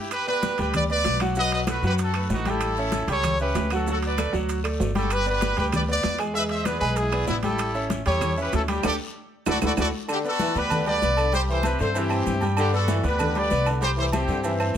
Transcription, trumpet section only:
0.00 E4 G4
0.12 G4 B4
0.28 G4 B4
0.59 G4 B4
0.75 B4 D5
0.89 B4 D5
1.37 B4 D#5
1.53 B4 D#5
1.69 F#4 B4
1.86 G4 B4
2.02 F#4 A4
2.29 D#4 F#4 G4
2.48 E4 A4
3.09 A4 C#5
3.40 G4 B4
3.73 F#4 A4
3.89 F#4 A4
4.05 B4 D5
4.97 F#4 A4
5.12 G4 B4
5.28 G4 B4
5.58 G4 B4
5.74 B4 D5
5.90 B4 D5
6.33 B4 E5
6.49 C5 E5
6.64 G#4 B4
6.79 G#4 B4
6.96 E4 G#4
7.27 B3 E4
7.43 E4 A4
8.05 A4 C#5
8.39 G4 B4
8.55 E4 A4
8.70 D4 G4
8.85 G4 A4 D5
9.49 F#4 A4 D5
9.65 F#4 A4 D5
9.79 F#4 A4 D5
10.11 D4 G4
10.26 F#4 A4
10.55 G4 B4
10.87 B4 D5
11.33 G4 C5
11.49 A4 C5
11.65 G4 B4
11.79 A4 C5
11.97 E4 G4
12.57 D4 G4
12.73 F#4 A4
13.06 G4 B4
13.36 B4 D5
13.82 G4 C5
13.98 A4 C5
14.13 E4 G4

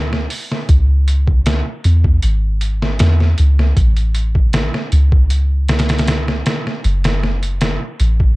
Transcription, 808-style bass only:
Already playing: D2
0.69 C#2
1.85 E2
2.24 G#1
3.01 E2
3.40 C#2
3.77 A1
4.93 C#2
6.85 F#1
8.00 A1

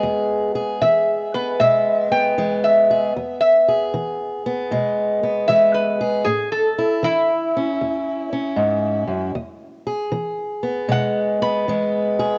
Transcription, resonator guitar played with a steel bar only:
0.81 E5
1.34 B4
1.60 E5
2.12 G5
2.64 E5
3.41 E5
5.48 E5
5.74 B4
6.24 G#4
6.52 A4
7.04 E4
10.92 F#5
11.42 B5

